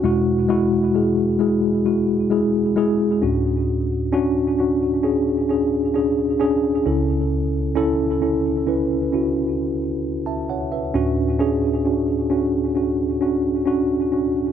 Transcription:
<<
  \new Staff \with { instrumentName = "Tine electric piano" } { \time 4/4 \key d \lydian \tempo 4 = 66 << { r1 | r1 | r2. r16 <e'' a''>16 <cis'' fis''>16 <b' e''>16~ | <b' e''>16 r2. r8. | } \\ { <gis e' fis'>8 <gis e' fis'>8 <gis e' gis'>8 <gis e' gis'>8 <gis e' fis'>8 <gis e' gis'>8 <gis e' gis'>8 <cis' d' fis'>8~ | <cis' d' fis'>8 <cis' d' fis'>8 <cis' d' fis'>8 <cis' d' gis'>8 <cis' d' gis'>8 <cis' d' gis'>8 <cis' d' gis'>8 <cis' e' a'>8~ | <cis' e' a'>8 <cis' e' a'>8 <cis' e' a'>8 <cis' e' b'>8 <cis' e' fis'>8 r4. | <cis' d' fis'>8 <cis' d' gis'>8 <cis' d' fis'>8 <cis' d' fis'>8 <cis' d' fis'>8 <cis' d' fis'>8 <cis' d' fis'>8 <cis' d' fis'>8 | } >> }
  \new Staff \with { instrumentName = "Tine electric piano" } { \clef bass \time 4/4 \key d \lydian <e, b,>2.~ <e, b,>8 <d, a,>8~ | <d, a,>2.~ <d, a,>8 <cis, cis>8~ | <cis, cis>2.~ <cis, cis>8 r8 | <d, a,>1 | }
>>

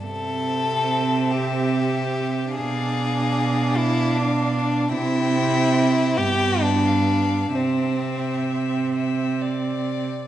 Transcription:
<<
  \new Staff \with { instrumentName = "Violin" } { \time 6/8 \key c \major \tempo 4. = 47 e''2. | f''2. | g''4. g''8. f''8. | e''4. e''8 d''4 | }
  \new Staff \with { instrumentName = "Violin" } { \time 6/8 \key c \major a'4. g'4. | gis'4. e'8 d'4 | e'4. g'8 d'4 | c'4. r4. | }
  \new Staff \with { instrumentName = "Viola" } { \time 6/8 \key c \major c'2. | d'2. | c'4. b4. | c'2~ c'8. r16 | }
  \new Staff \with { instrumentName = "Cello" } { \clef bass \time 6/8 \key c \major c2. | b,2. | c4. g,4. | c2~ c8. r16 | }
>>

